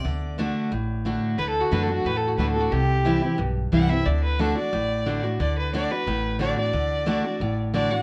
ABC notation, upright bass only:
X:1
M:4/4
L:1/8
Q:1/4=179
K:Dmix
V:1 name="Upright bass" clef=bass
D,,4 A,,,4 | D,,2 F,,2 E,,2 D,,2 | C,,4 B,,,2 C,,2 | D,,4 A,,,4 |
D,,4 A,,,4 | D,,4 A,,,4 |]